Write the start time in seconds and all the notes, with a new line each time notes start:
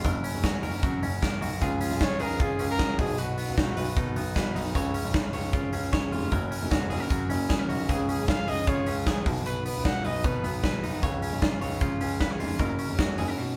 Already playing: C#4
0.04 F#1 F#3 A#4, kick, closed hi-hat
0.24 C#4, open hi-hat
0.34 F1
0.43 F#4, kick, snare, closed hi-hat
0.63 F#1 A#4, open hi-hat
0.83 F#2 F#4, kick, closed hi-hat
1.03 F#1 C#4, open hi-hat
1.22 A#4, kick, snare, closed hi-hat
1.41 B1 F#4, open hi-hat
1.61 C#2 C#3 F3 G#3 C#4 F4 G#4, kick, closed hi-hat
1.81 C#4 F4, open hi-hat
1.90 B1 F3 G#3 C#4
2.01 F4 C#5, kick, snare, closed hi-hat
2.19 C#2 C#3 F3 G#3 C#4 G#4 A#4, open hi-hat
2.39 C#3 F4 G#4, kick, closed hi-hat
2.59 C#2 C#3 F3 G#3 C#4, open hi-hat
2.70 A#4
2.78 C#3 F3 G#3 C#4 G#4, kick, snare, closed hi-hat
2.98 B1 B2 F#3 B3 D#4 G#4, kick, open hi-hat
3.18 B2 F#4 B4, closed hi-hat
3.38 B3, open hi-hat
3.46 C#2 F#3 B3 D#4
3.57 D#4 F#4, kick, snare, closed hi-hat
3.76 B1 B2 F#3 B3 D#4 B4, open hi-hat
3.97 B2 D#4, kick, closed hi-hat
4.15 B1 B2 F#3 B3 D#4, open hi-hat
4.34 B2 F#3 B3 D#4 B4, kick, snare, closed hi-hat
4.55 B1 D#4, open hi-hat
4.74 C#2 C#3 F3 G#3 C#4 C#5, kick, closed hi-hat
4.94 C#4, open hi-hat
5.04 B1 F3 G#3 C#4
5.14 D#4, kick, snare, closed hi-hat
5.24 F4
5.33 C#2 C#3 F3 G#3 C#4 C#5, open hi-hat
5.53 C#3 F4, kick, closed hi-hat
5.72 C#2 C#3 F3 G#3 C#4, open hi-hat
5.92 C#3 F3 G#3 C#4 C#5, kick, snare, closed hi-hat
6.12 F1 F4, open hi-hat
6.31 F#1 F#2 C#3 F#3 A#3 C#4 A#4, kick, closed hi-hat
6.51 C#4, open hi-hat
6.61 F1 F#3 A#3 C#4
6.71 F#4, kick, snare, closed hi-hat
6.90 F#1 C#3 F#3 A#3 C#4 G#4, open hi-hat
7.00 A#4
7.10 F#2 F#4, kick, closed hi-hat
7.29 F#1 C#3 F#3 A#3 C#4, open hi-hat
7.49 C#3 F#3 A#3 C#4 G#4, kick, snare, closed hi-hat
7.59 A#4
7.69 B1 F#4, open hi-hat
7.88 C#2 C#3 F3 G#3 C#4 G#4, kick, closed hi-hat
8.09 C#4 G#4, open hi-hat
8.18 B1 F3 G#3 C#4
8.28 F4 F5, kick, snare, closed hi-hat
8.47 C#2 C#3 F3 G#3 C#4 G#4 D#5, open hi-hat
8.67 C#3 F4 C#5, kick, closed hi-hat
8.86 C#2 C#3 F3 G#3 C#4, open hi-hat
9.05 C#3 F3 G#3 C#4 G#4, kick, snare, closed hi-hat
9.25 B1 B2 F#3 B3 D#4, kick, open hi-hat
9.46 B2 B4, closed hi-hat
9.65 B3 B4, open hi-hat
9.74 C#2 F#3 B3 D#4
9.85 D#4 F#5, kick, snare, closed hi-hat
10.03 B1 B2 F#3 B3 D#4 B4 D#5, open hi-hat
10.24 B2 D#4 B4, kick, closed hi-hat
10.43 B1 B2 F#3 B3 D#4, open hi-hat
10.62 B2 F#3 B3 D#4 B4, kick, snare, closed hi-hat
10.83 B1 D#4, open hi-hat
11.02 C#2 C#3 F3 G#3 C#4 C#5, kick, closed hi-hat
11.22 C#4, open hi-hat
11.32 B1 F3 G#3 C#4
11.42 F4, kick, snare, closed hi-hat
11.61 C#2 C#3 F3 G#3 C#4 C#5, open hi-hat
11.81 C#3 F4, kick, closed hi-hat
12.00 C#2 C#3 F3 G#3 C#4, open hi-hat
12.19 C#3 F3 G#3 C#4 B4, kick, snare, closed hi-hat
12.30 C#5
12.40 F1 F4, open hi-hat
12.59 F#1 F#2 C#3 F#3 A#3 C#4 A#4, kick, closed hi-hat
12.79 C#4, open hi-hat
12.88 F1 F#3 A#3 C#4
12.99 F#4, kick, snare, closed hi-hat
13.18 F#1 C#3 F#3 A#3 C#4 G#4, open hi-hat
13.28 A#4
13.37 B2 D#3 F#3 C#4 D#4